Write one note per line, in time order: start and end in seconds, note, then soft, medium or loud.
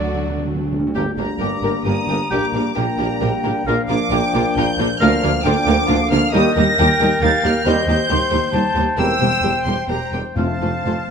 0.00 0.74 D2 medium
0.00 0.74 D3 medium
0.00 0.75 F#3 medium
0.00 0.73 A3 medium
0.00 0.72 D4 medium
0.00 0.71 F#4 medium
0.00 0.45 D5 medium
0.05 0.13 D3 soft
0.14 0.21 D3 medium
0.23 0.29 D3 medium
0.30 0.37 D3 medium
0.38 0.46 D3 medium
0.47 0.54 D3 medium
0.55 0.62 D3 medium
0.63 0.71 D3 medium
0.72 0.78 D3 medium
0.79 0.86 D3 medium
0.87 0.94 D3 loud
0.94 1.04 G1 medium
0.94 2.27 G2 medium
0.94 1.04 G2 medium
0.94 2.27 G3 medium
0.94 2.27 A#3 medium
0.94 1.03 A#3 medium
0.94 2.27 D4 medium
0.94 1.03 D4 medium
0.94 1.02 G4 medium
0.94 1.11 G4 medium
0.94 1.03 A#4 medium
0.94 1.12 G5 medium
1.17 1.25 G1 medium
1.17 1.27 G1 medium
1.17 1.26 G2 medium
1.17 1.26 A#3 medium
1.17 1.26 D4 medium
1.17 1.26 G4 medium
1.17 1.26 A#4 medium
1.17 1.82 A#5 medium
1.39 1.47 G1 medium
1.39 1.50 G1 medium
1.39 1.49 G2 medium
1.39 1.49 A#3 medium
1.39 1.48 D4 medium
1.39 1.48 G4 medium
1.39 1.47 A#4 medium
1.39 1.83 D6 medium
1.62 1.70 G1 medium
1.62 1.72 G1 medium
1.62 1.71 G2 medium
1.62 1.72 A#3 medium
1.62 1.72 D4 medium
1.62 1.71 G4 medium
1.62 1.71 A#4 medium
1.85 1.93 G1 medium
1.85 1.95 G1 medium
1.85 1.94 G2 medium
1.85 1.94 A#3 medium
1.85 1.94 D4 medium
1.85 1.93 G4 medium
1.85 1.93 A#4 medium
1.85 2.74 A#5 medium
1.85 2.31 D#6 loud
2.08 2.16 G1 medium
2.08 2.18 G1 medium
2.08 2.17 G2 medium
2.08 2.18 A#3 medium
2.08 2.18 D4 medium
2.08 2.16 G4 medium
2.08 2.16 A#4 medium
2.30 2.39 A#1 medium
2.30 2.40 A#1 medium
2.30 2.75 A#2 medium
2.30 2.40 A#2 medium
2.30 2.74 G3 medium
2.30 2.74 A#3 medium
2.30 2.40 A#3 medium
2.30 2.74 D4 medium
2.30 2.40 D4 medium
2.30 2.47 G4 medium
2.30 2.39 G4 medium
2.30 2.40 A#4 medium
2.30 2.47 G5 medium
2.30 2.76 D6 medium
2.53 2.61 A#1 medium
2.53 2.62 A#1 medium
2.53 2.63 A#2 medium
2.53 2.63 A#3 medium
2.53 2.62 D4 medium
2.53 2.62 G4 medium
2.53 2.63 A#4 medium
2.75 2.85 A#1 medium
2.75 2.84 A#1 medium
2.75 3.64 A#2 medium
2.75 2.85 A#2 medium
2.75 3.65 G3 medium
2.75 3.64 A#3 medium
2.75 2.85 A#3 medium
2.75 3.64 D4 medium
2.75 2.84 D4 medium
2.75 2.83 G4 medium
2.75 2.83 A#4 medium
2.75 3.19 G5 medium
2.75 3.67 A#5 medium
2.98 3.06 A#1 medium
2.98 3.08 A#1 medium
2.98 3.07 A#2 medium
2.98 3.06 A#3 medium
2.98 3.07 D4 medium
2.98 3.06 G4 medium
2.98 3.06 A#4 medium
3.20 3.29 A#1 medium
3.20 3.30 A#1 medium
3.20 3.30 A#2 medium
3.20 3.29 A#3 medium
3.20 3.28 D4 medium
3.20 3.28 G4 medium
3.20 3.28 A#4 medium
3.20 3.68 G5 medium
3.44 3.52 A#1 medium
3.44 3.53 A#1 medium
3.44 3.53 A#2 medium
3.44 3.52 A#3 medium
3.44 3.52 D4 medium
3.44 3.52 G4 medium
3.44 3.52 A#4 medium
3.65 3.75 A#1 medium
3.65 3.76 A#1 medium
3.65 4.96 A#2 medium
3.65 3.75 A#2 medium
3.65 4.96 F3 medium
3.65 4.97 A#3 medium
3.65 3.75 A#3 medium
3.65 4.97 D4 medium
3.65 3.75 D4 medium
3.65 3.76 F4 medium
3.65 3.82 A#4 medium
3.65 3.77 A#4 medium
3.65 4.13 F5 medium
3.65 3.82 F5 medium
3.89 3.98 A#1 medium
3.89 3.98 A#2 medium
3.89 3.98 A#3 medium
3.89 3.98 D4 medium
3.89 3.97 F4 medium
3.89 3.97 A#4 medium
3.89 4.52 D6 loud
4.10 4.20 A#1 medium
4.10 4.20 A#2 medium
4.10 4.19 A#3 medium
4.10 4.19 D4 medium
4.10 4.18 F4 medium
4.10 4.19 A#4 medium
4.10 4.72 G5 medium
4.33 4.43 A#1 medium
4.33 4.42 A#2 medium
4.33 4.41 A#3 medium
4.33 4.42 D4 medium
4.33 4.43 F4 medium
4.33 4.42 A#4 medium
4.55 4.65 A#1 medium
4.55 4.65 A#2 medium
4.55 4.65 A#3 medium
4.55 4.64 D4 medium
4.55 4.65 F4 medium
4.55 4.65 A#4 medium
4.55 4.99 G6 loud
4.78 4.87 A#1 medium
4.78 4.86 A#1 medium
4.78 4.87 A#2 medium
4.78 4.87 A#3 medium
4.78 4.87 D4 medium
4.78 4.87 F4 medium
4.78 4.87 A#4 medium
5.00 5.09 D2 loud
5.00 5.09 D2 medium
5.00 5.43 D3 medium
5.00 5.43 F3 medium
5.00 5.42 A#3 medium
5.00 5.09 A#3 medium
5.00 5.43 D4 medium
5.00 5.10 D4 medium
5.00 5.09 F4 medium
5.00 5.16 A#4 medium
5.00 5.09 A#4 medium
5.00 5.16 F5 medium
5.00 5.42 F5 loud
5.00 5.44 F6 loud
5.22 5.30 D2 medium
5.22 5.31 D2 medium
5.22 5.31 A#3 medium
5.22 5.31 D4 medium
5.22 5.31 F4 medium
5.22 5.32 A#4 medium
5.43 5.53 D2 medium
5.43 5.53 D2 loud
5.43 5.54 D2 medium
5.43 6.32 D3 medium
5.43 6.32 F3 medium
5.43 6.31 A#3 medium
5.43 5.53 A#3 medium
5.43 6.32 D4 medium
5.43 5.53 D4 medium
5.43 5.53 F4 medium
5.43 5.52 A#4 medium
5.43 5.87 G5 medium
5.43 6.11 D6 loud
5.66 5.74 D2 medium
5.66 5.75 D2 medium
5.66 5.76 D2 medium
5.66 5.75 A#3 medium
5.66 5.75 D4 medium
5.66 5.75 F4 medium
5.66 5.74 A#4 medium
5.88 5.96 D2 medium
5.88 5.97 D2 medium
5.88 5.97 D2 loud
5.88 5.97 A#3 medium
5.88 5.98 D4 medium
5.88 5.96 F4 medium
5.88 5.96 A#4 medium
5.88 6.34 F5 medium
6.10 6.18 D2 medium
6.10 6.20 D2 medium
6.10 6.19 D2 medium
6.10 6.19 A#3 medium
6.10 6.19 D4 medium
6.10 6.20 F4 medium
6.10 6.19 A#4 medium
6.10 6.33 F6 loud
6.32 6.41 D#2 medium
6.32 6.43 D#2 medium
6.32 6.42 D#2 loud
6.32 6.50 D#3 medium
6.32 6.41 G3 medium
6.32 6.50 G3 medium
6.32 6.49 A#3 loud
6.32 6.42 D#4 medium
6.32 6.49 G4 loud
6.32 6.42 G4 medium
6.32 7.68 A#4 loud
6.32 6.42 A#4 medium
6.32 6.80 D#5 loud
6.32 8.95 G5 medium
6.32 6.56 D#6 loud
6.55 6.65 D#2 medium
6.55 6.66 D#2 medium
6.55 6.65 D#2 medium
6.55 6.65 G3 medium
6.55 6.65 D#4 medium
6.55 6.65 G4 medium
6.55 6.64 A#4 medium
6.55 7.21 A#6 loud
6.78 6.86 D#2 medium
6.78 6.88 D#2 medium
6.78 6.87 D#2 loud
6.78 6.87 G3 medium
6.78 6.87 D#4 medium
6.78 6.87 G4 medium
6.78 6.86 A#4 medium
6.78 7.24 G5 medium
6.99 7.07 D#2 medium
6.99 7.09 D#2 medium
6.99 7.10 D#2 medium
6.99 7.10 G3 medium
6.99 7.09 D#4 medium
6.99 7.08 G4 medium
6.99 7.08 A#4 medium
7.21 7.29 D#2 medium
7.21 7.32 D#2 medium
7.21 7.31 D#2 medium
7.21 7.30 G3 medium
7.21 7.31 D#4 medium
7.21 7.29 G4 medium
7.21 7.30 A#4 medium
7.21 7.65 F5 medium
7.21 7.45 A6 loud
7.43 7.52 D#2 medium
7.43 7.53 D#2 medium
7.43 7.53 G3 medium
7.43 7.53 D#4 medium
7.43 7.51 G4 medium
7.43 7.51 A#4 medium
7.43 7.66 F6 loud
7.65 7.73 D#2 medium
7.65 7.75 D#2 medium
7.65 7.75 D#2 loud
7.65 7.81 D#3 medium
7.65 7.81 G3 medium
7.65 7.75 G3 medium
7.65 7.82 C4 medium
7.65 7.75 D#4 medium
7.65 7.73 G4 medium
7.65 7.82 G4 medium
7.65 7.73 C5 medium
7.65 8.97 C5 medium
7.65 8.09 D#5 loud
7.65 7.87 G6 loud
7.87 7.95 D#2 medium
7.87 7.97 D#2 medium
7.87 7.97 G3 medium
7.87 7.96 D#4 medium
7.87 7.96 G4 medium
7.87 7.95 C5 medium
7.87 8.74 G6 loud
8.08 8.18 D#2 medium
8.08 8.19 D#2 medium
8.08 8.19 G3 medium
8.08 8.18 D#4 medium
8.08 8.16 G4 medium
8.08 8.17 C5 medium
8.08 8.52 C6 medium
8.30 8.39 D#2 medium
8.30 8.40 D#2 medium
8.30 8.40 G3 medium
8.30 8.40 D#4 medium
8.30 8.39 G4 medium
8.30 8.38 C5 medium
8.52 8.61 D#2 medium
8.52 8.63 D#2 medium
8.52 8.62 D#2 medium
8.52 8.63 G3 medium
8.52 8.62 D#4 medium
8.52 8.60 G4 medium
8.52 8.61 C5 medium
8.52 9.01 A5 medium
8.74 8.83 D#2 medium
8.74 8.84 D#2 medium
8.74 8.85 D#2 medium
8.74 8.85 G3 medium
8.74 8.84 D#4 medium
8.74 8.82 G4 medium
8.74 8.83 C5 medium
8.97 9.05 E1 medium
8.97 9.07 E1 medium
8.97 9.07 E2 medium
8.97 9.14 E3 medium
8.97 9.07 G3 medium
8.97 9.14 A#3 medium
8.97 9.14 C4 medium
8.97 9.13 G4 medium
8.97 9.06 G4 medium
8.97 9.05 A#4 medium
8.97 9.05 C5 medium
8.97 9.85 C5 medium
8.97 9.85 G5 medium
8.97 10.07 G5 medium
8.97 9.62 E6 loud
9.20 9.29 E1 medium
9.20 9.30 E1 medium
9.20 9.29 E2 medium
9.20 9.28 G3 medium
9.20 9.29 G4 medium
9.20 9.28 A#4 medium
9.20 9.28 C5 medium
9.42 9.50 E1 medium
9.42 9.53 E1 medium
9.42 9.51 E2 medium
9.42 9.51 G3 medium
9.42 9.51 G4 medium
9.42 9.51 A#4 medium
9.42 9.51 C5 medium
9.65 9.73 E1 medium
9.65 9.76 E1 medium
9.65 9.74 E2 medium
9.65 9.75 G3 medium
9.65 9.75 G4 medium
9.65 9.74 A#4 medium
9.65 9.74 C5 medium
9.65 9.88 C6 medium
9.88 9.96 E1 medium
9.88 9.99 E1 medium
9.88 9.97 E2 medium
9.88 9.98 G3 soft
9.88 9.98 G4 medium
9.88 9.97 A#4 medium
9.88 9.96 C5 medium
9.88 10.36 C5 medium
9.88 10.36 G5 medium
9.88 10.12 A#5 medium
10.12 10.21 E1 medium
10.12 10.23 E1 medium
10.12 10.20 E2 medium
10.12 10.21 G3 medium
10.12 10.21 G4 soft
10.12 10.20 A#4 medium
10.12 10.20 C5 soft
10.12 10.21 G5 medium
10.35 10.44 F1 medium
10.35 10.46 F1 medium
10.35 11.05 F2 medium
10.35 10.44 F2 medium
10.35 10.54 F3 soft
10.35 10.54 A3 medium
10.35 10.45 A3 soft
10.35 10.53 C4 medium
10.35 10.53 F4 medium
10.35 10.45 F4 soft
10.35 10.45 A4 soft
10.35 11.11 C5 medium
10.35 10.45 C5 medium
10.35 11.11 F5 medium
10.35 11.11 A5 medium
10.61 10.69 F1 medium
10.61 10.71 F1 soft
10.61 10.69 F2 medium
10.61 10.70 A3 soft
10.61 10.69 F4 soft
10.61 10.69 A4 soft
10.61 10.69 C5 soft
10.85 10.93 F1 medium
10.85 10.95 F1 medium
10.85 10.93 F2 medium
10.85 10.95 A3 soft
10.85 10.94 F4 medium
10.85 10.94 A4 medium
10.85 10.93 C5 medium